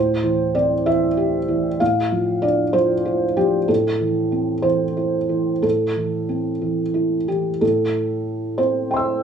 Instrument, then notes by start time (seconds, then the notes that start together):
felt piano
Already playing: A2 C5
0.23 E3
0.55 C4 D5
0.86 E3 E5
1.17 G4
1.48 E3
1.80 A2 F5
2.12 F3
2.42 D4 D5
2.73 F3 C5
3.05 F4
3.37 F3 G4
3.68 A2 A4
4.00 E3
4.32 C4
4.62 E3 C5
4.97 E4
5.29 E3
5.62 A2 A4
5.96 E3
6.29 C4
6.61 E3
6.94 E4
7.28 E3 G4
7.61 A2 A4
8.58 C4 E4 C5
8.91 G5 C6
8.97 E6